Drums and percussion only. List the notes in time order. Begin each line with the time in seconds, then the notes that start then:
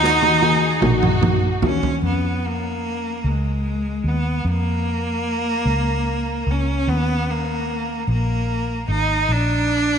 0.04 snare
0.22 high tom
0.42 high tom
0.82 mid tom
1.02 mid tom
1.22 mid tom
1.62 floor tom
1.83 floor tom